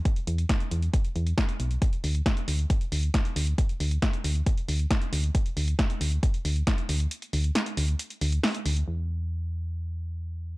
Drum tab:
HH |xxxxxxxxxxxxxxxx|xxoxxxoxxxoxxxox|xxoxxxoxxxoxxxox|xxoxxxoxxxoxxxox|
SD |----o-------o---|----o-------o---|----o-------o---|----o-------o---|
BD |o---o---o---o---|o---o---o---o---|o---o---o---o---|o---o---o---o---|

HH |xxoxxxoxxxoxoxox|----------------|
SD |----o-------o---|----------------|
BD |----------------|----------------|